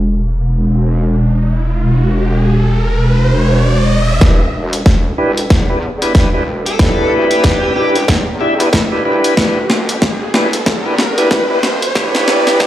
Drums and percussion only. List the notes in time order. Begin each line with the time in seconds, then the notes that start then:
4.21 kick, snare, closed hi-hat
4.73 closed hi-hat
4.86 kick, snare, closed hi-hat
5.37 closed hi-hat
5.50 kick, snare, closed hi-hat
6.02 closed hi-hat
6.15 kick, snare, closed hi-hat
6.66 closed hi-hat
6.79 kick, snare, closed hi-hat
7.31 closed hi-hat
7.44 kick, snare, closed hi-hat
7.96 closed hi-hat
8.08 kick, snare, closed hi-hat
8.60 closed hi-hat
8.73 kick, snare, closed hi-hat
9.24 closed hi-hat
9.37 kick, snare, closed hi-hat
9.70 snare
9.89 closed hi-hat
10.02 kick, snare, closed hi-hat
10.34 snare
10.53 closed hi-hat
10.66 kick, snare, closed hi-hat
10.98 snare
11.18 closed hi-hat
11.31 kick, snare, closed hi-hat
11.63 snare
11.82 closed hi-hat
11.95 kick, snare, closed hi-hat
12.15 snare
12.28 snare
12.47 snare, closed hi-hat
12.60 kick, snare, closed hi-hat